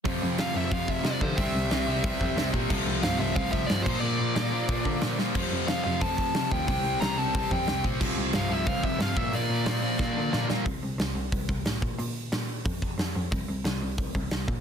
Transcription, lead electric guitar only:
X:1
M:4/4
L:1/8
Q:1/4=181
K:F
V:1 name="Lead electric guitar"
z2 f e f e d c | e6- e z | z2 f e f e d c | d6- d z |
z2 f f a a2 g | g2 b a2 g2 z | z2 f e f e f e | d6- d z |
z8 | z8 | z8 |]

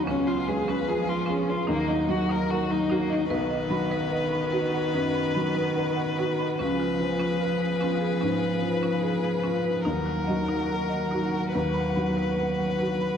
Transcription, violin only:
X:1
M:4/4
L:1/16
Q:1/4=73
K:Cblyd
V:1 name="Violin"
D F A c A F D F B, E G B G E B, E | =B16 | c16 | B8 =B8 |]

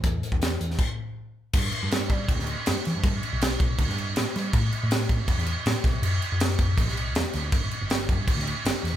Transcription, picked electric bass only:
X:1
M:4/4
L:1/16
Q:1/4=160
K:Glyd
V:1 name="Picked electric bass" clef=bass
E,,2 z E,,3 E,,2 z8 | G,,2 z G,,3 G,2 D,, D,,2 z G,, z E, G,, | G,,2 z B,,,3 B,,,2 D,, G,,3 A,, z G,2 | A,,2 z A,,3 A,,2 E,, E,,2 z A,, z B,,, B,,, |
F,,2 z F,,3 F,,2 A,,, B,,,3 E,, z D,,2 | G,,,2 z G,,,3 G,,2 D,, D,,2 z G,,, z E,, G,,, |]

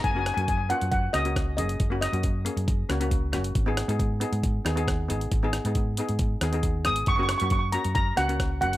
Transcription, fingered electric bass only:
X:1
M:4/4
L:1/16
Q:1/4=136
K:F#
V:1 name="Fingered electric bass" clef=bass
F,,,3 F,,4 F,,3 C,,4 F,,,2 | F,,,3 F,,4 F,,3 C,,4 F,,,2 | G,,,3 G,,4 G,,3 D,,4 G,,,2 | G,,,3 G,,4 G,,3 D,,4 G,,,2 |
F,,,3 F,,4 F,,3 C,,4 F,,,2 |]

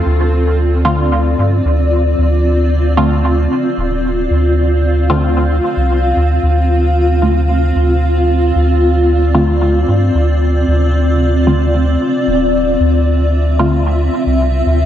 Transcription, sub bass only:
X:1
M:4/4
L:1/16
Q:1/4=113
K:Dm
V:1 name="Sub bass" clef=bass
D,,8- D,,2 G,,2 D,,4 | D,,8- D,,2 z2 D,,,4 | D,,8- D,,2 z C,,3 D,,2 | D,,8- D,,2 D,,6 |
D,,8- D,,2 G,,2 D,,4 | D,,8- D,,2 z2 D,,,4 | D,,8- D,,2 z C,,3 D,,2 |]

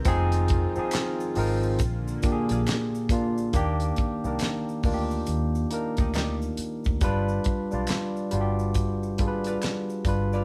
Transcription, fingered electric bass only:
X:1
M:4/4
L:1/16
Q:"Swing 16ths" 1/4=69
K:Eb
V:1 name="Fingered electric bass" clef=bass
F,,,3 z3 A,,,2 B,,,2 z B,,, z4 | E,,2 z C,, z2 D,,2 E,,2 z D,,3 z D,, | G,,,2 z =B,,, z2 G,,,4 A,,,2 z2 G,,,2 |]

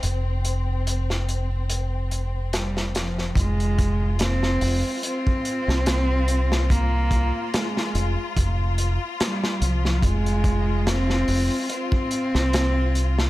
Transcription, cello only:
X:1
M:4/4
L:1/8
Q:"Swing 16ths" 1/4=72
K:Fm
V:1 name="Cello" clef=bass
z6 G, F, | A,2 C2 C4 | B,2 A,2 z2 G, F, | A,2 C2 C4 |]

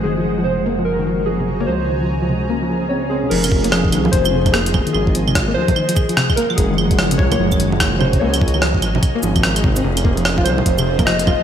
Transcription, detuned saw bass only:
X:1
M:4/4
L:1/8
Q:"Swing 16ths" 1/4=147
K:Fphr
V:1 name="Detuned saw bass" clef=bass
G,,,8 | D,,8 | F,,,3 C,, F,,,3 z | A,,,3 E,, z4 |
G,,,3 D,, G,,,4 | D,,3 A,,, z A,,,3 | F,,,3 C,, F,,,3 z |]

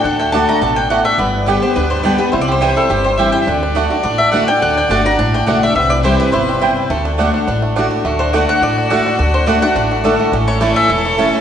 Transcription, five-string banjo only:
X:1
M:4/4
L:1/8
Q:"Swing" 1/4=210
K:Dmix
V:1 name="Five-string banjo"
D A, D A, D D A, D | B,2 G B, D G, D B, | E G G, E G G, G E | D D A, D D A, D D |
D D D D D A, D D | C E G C E G, E C | A, D D D D A, D D | [K:D] A, D A, D D D D D |
D D D A, D A, D A, | C E C A, E A, C A, |]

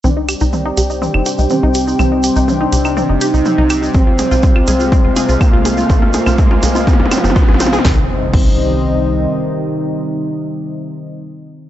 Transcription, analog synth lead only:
X:1
M:4/4
L:1/8
Q:1/4=123
K:Cm
V:1 name="Analog synth lead"
D6 C2- | C2 D3 E3 | C6 B,2- | B,2 A,3 F,3 |
E, z E,6- | E,8 |]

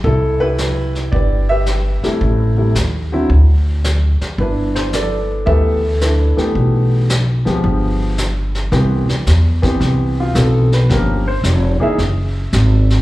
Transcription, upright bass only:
X:1
M:4/4
L:1/8
Q:"Swing" 1/4=111
K:G
V:1 name="Upright bass" clef=bass
C,,4 G,,,3 z | A,,,2 _E,,2 D,,3 z | G,,,4 D,,3 z | B,,,3 D,, G,,,4 |
[K:C] C,, z E,,2 C,,2 B,,,2 | G,,,2 F,,, z ^F,,,2 ^G,,,2 |]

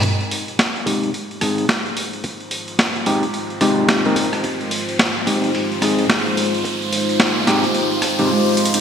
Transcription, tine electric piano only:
X:1
M:4/4
L:1/16
Q:"Swing 16ths" 1/4=109
K:Fm
V:1 name="Tine electric piano"
z6 [A,CEG]2 z2 [A,CEA]2 z4 | z6 [A,CEG] z3 [A,CEG]3 [A,CEB]2 z | z6 [A,CEG]2 z2 [A,CEA]2 z4 | z6 [A,CEG] z4 [A,CEG] z4 |]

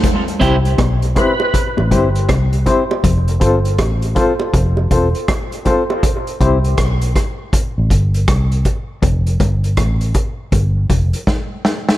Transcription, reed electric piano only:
X:1
M:4/4
L:1/8
Q:"Swing 16ths" 1/4=80
K:C
V:1 name="Reed electric piano"
z [CEGc] z [CEGc] z [CEGc] z [CEGc] | z [CFAc] z [CFAc] z [CFAc] z [CFAc] | z [CEGc] z6 | z8 |]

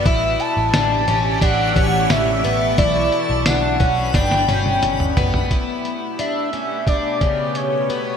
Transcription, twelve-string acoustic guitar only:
X:1
M:4/4
L:1/8
Q:1/4=88
K:Glyd
V:1 name="Twelve-string acoustic guitar"
E2 D C D C2 B, | E2 D C D C2 B, | E2 D C D C,2 B, |]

